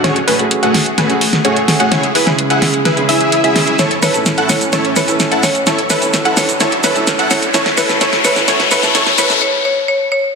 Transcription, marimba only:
4.03 C#5
4.49 C#5
4.97 C#5
5.43 C#5
5.90 C#5
6.37 C#5
6.84 C#5
7.31 C#5
7.78 C#5
8.24 C#5
8.71 C#5
9.18 C#5
9.42 C#5
9.65 C#5
9.88 C#5
10.12 C#5

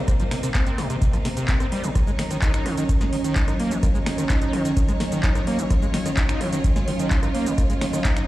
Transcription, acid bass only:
0.08 C3
0.20 F3
0.32 C3
0.43 C3
0.55 C4
0.67 C4
0.78 C3
0.90 C3
1.02 C3
1.14 F3
1.25 C3
1.37 C3
1.49 C4
1.60 C4
1.72 G3
1.84 C3
1.96 D#3
2.07 G#3
2.19 D#3
2.31 D#3
2.42 D#4
2.54 D#4
2.66 D#3
2.78 D#3
2.89 D#3
3.01 G#3
3.13 D#3
3.24 D#3
3.36 D#4
3.48 D#4
3.60 A#3
3.71 D#3
3.83 D#3
3.95 G#3
4.07 D#3
4.18 D#3
4.30 D#4
4.42 D#4
4.53 D#3
4.65 D#3
4.77 D#3
4.89 G#3
5.00 D#3
5.12 D#3
5.24 D#4
5.35 D#4
5.47 A#3
5.59 D#3
5.71 D#3
5.82 G#3
5.94 D#3
6.06 D#3
6.17 D#4
6.29 D#4
6.41 D#3
6.53 D#3
6.64 D#3
6.76 G#3
6.88 D#3
6.99 D#3
7.11 D#4
7.23 D#4
7.35 A#3
7.46 D#3
7.58 D#3
7.70 G#3
7.81 D#3
7.93 D#3
8.05 D#4
8.17 D#4

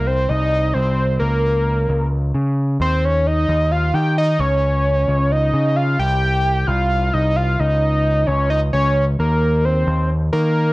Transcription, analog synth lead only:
0.07 C5
0.29 D#5
0.74 C5
1.19 A#4
2.81 C5
3.04 C#5
3.27 D#5
3.71 F5
3.94 G5
4.18 D#5
4.40 C#5
5.32 D#5
5.76 F5
5.99 G5
6.67 F5
7.13 D#5
7.36 F5
7.59 D#5
8.27 C#5
8.50 D#5
8.73 C#5
9.20 A#4
9.65 C5
10.33 A#4

